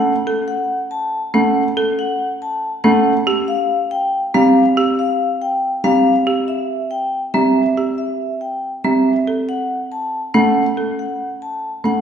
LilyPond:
<<
  \new Staff \with { instrumentName = "Vibraphone" } { \time 7/8 \key a \mixolydian \tempo 4 = 140 r4 fis''8 r8 a''8 r8 fis''8 | r4 fis''8 r8 a''8 r8 fis''8 | r4 f''8 r8 g''8 r8 f''8 | r4 f''8 r8 g''8 r8 f''8 |
r4 e''8 r8 g''8 r8 e''8 | r4 e''8 r8 g''8 r8 e''8 | r4 fis''8 r8 a''8 r8 fis''8 | r4 fis''8 r8 a''8 r8 fis''8 | }
  \new Staff \with { instrumentName = "Marimba" } { \time 7/8 \key a \mixolydian r8 a'8 r2 cis'8 | r8 a'8 r2 cis'8 | r8 g'8 r2 c'8 | r8 g'8 r2 c'8 |
r8 g'8 r2 c'8 | r8 g'8 r2 c'8 | r8 a'8 r2 cis'8 | r8 a'8 r2 cis'8 | }
  \new Staff \with { instrumentName = "Grand piano" } { \clef bass \time 7/8 \key a \mixolydian r2. a8 | r2. a8 | r2. g8 | r2. g8 |
r2. g8 | r2. g8 | r2. a8 | r2. a8 | }
>>